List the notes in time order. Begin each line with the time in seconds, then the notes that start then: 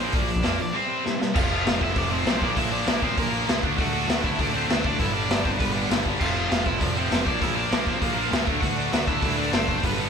0.00 A#1 A#2 F3 A#3 C4 C5
0.12 A#1 A#2 F3 A#3 D4 D5, kick, open hi-hat
0.28 A#2 F3, open hi-hat
0.36 kick
0.43 F2 A#2 F3 A#3, snare, open hi-hat
0.57 A#1 A#2 F3 D4, open hi-hat
0.62 D5
0.72 C3 G3 C4
0.77 C5
0.87 C3 G3 C4
1.03 C3 G3, snare
1.19 C3 G3, snare
1.34 F1 F2 C3 F3 A3 C4 F4 F5, kick, crash
1.38 F4
1.50 F2 C3 F3
1.65 F1 F2 C3 F3, snare, open hi-hat
1.80 F1 F2 C3 F3 E4, kick
1.84 E5
1.95 F1 F2 C3 F3 D4 D5, kick, open hi-hat
2.10 F2 C3 F3 A3 C4 F4 C5
2.25 B1 F2 C3 F3 A3 C4 F4, snare, open hi-hat
2.42 A#1 A#2 F3 A#3 D4 D5, kick
2.55 A#1 A#2 F3 A#3 E4 E5, kick, open hi-hat
2.70 A#2 F3 A#3 D4 D5
2.87 A#1 A#2 F3 A#3, snare, open hi-hat
3.01 A#1 A#2 F3 A#3 C4 C5, kick
3.17 A#1 A#2 F3 A#3 D4 A#4, kick, open hi-hat
3.32 A#2 F3 A#3 D4
3.47 C#2 A#2 F3 A#3, snare, open hi-hat
3.63 D2 D3 F#3 A3 D4, kick
3.77 D2 D3 A3 D4 F#4 F#5, kick, open hi-hat
3.93 D3 A3 D4
4.07 D2 D3 A3 D4, snare, open hi-hat
4.22 D2 D3 A3 D4 E4 E5, kick
4.38 D2 D3 F#3 A3 D4 D5, kick, open hi-hat
4.53 D3 F#3 A3 C4 D4 C5
4.68 D2 D3 A3 D4, snare, open hi-hat
4.83 D3 A3 D4 D5, kick
4.99 G1 G2 D3 G3 B3 D4 E4 E5, kick, open hi-hat
5.13 G2 D3 G3 D4 D5
5.29 G1 G2 D3 G3, snare, open hi-hat
5.44 G1 G2 D3 G3 C4 C5, kick
5.59 G1 G2 D3 G3 B3 B4, kick, open hi-hat
5.73 G2 D3 G3 B3 D4
5.88 G1 G2 D3 G3 B3, snare, open hi-hat
5.92 D4
6.04 G2 D3 G3, kick
6.19 F1 F2 C3 F3 A3 C4 F4 F5, kick, crash
6.34 F2 C3 F3
6.49 F1 F2 C3 F3, snare, open hi-hat
6.65 F1 F2 C3 F3 E4 E5, kick
6.80 F1 F2 C3 F3 D4 D5, kick, open hi-hat
6.95 F2 C3 F3 A3 C4 C5
7.10 F1 F2 C3 F3 A3 C4, snare, open hi-hat
7.25 A#1 A#2 F3 A#3 D4 D5, kick
7.41 A#1 A#2 F3 A#3 E4 E5, kick, open hi-hat
7.55 A#2 F3 A#3 D4 D5
7.70 A#1 A#2 F3 A#3, snare, open hi-hat
7.85 A#1 A#2 F3 A#3 C4 C5, kick
8.01 A#1 A#2 F3 A#3 D4 A#4, kick, open hi-hat
8.15 A#2 F3 A#3 D4
8.31 C#2 A#2 F3 A#3, snare, open hi-hat
8.46 D2 D3 F#3 A3 D4, kick
8.61 D2 D3 A3 D4 F#4 F#5, kick, open hi-hat
8.77 D3 A3 D4
8.91 D2 D3 A3 D4, snare, open hi-hat
9.06 D2 D3 A3 D4 E4 E5, kick
9.21 D2 D3 F#3 A3 D4, kick, open hi-hat
9.37 D3 F#3 A3 D4 D5
9.52 F#1 D3 A3 C4 D4 C5, snare, open hi-hat
9.67 D3 A3 D4, kick
9.77 C4 C5
9.82 G1 G2 D3 G3 B3 D4 B4, kick, open hi-hat
9.97 G2 D3 G3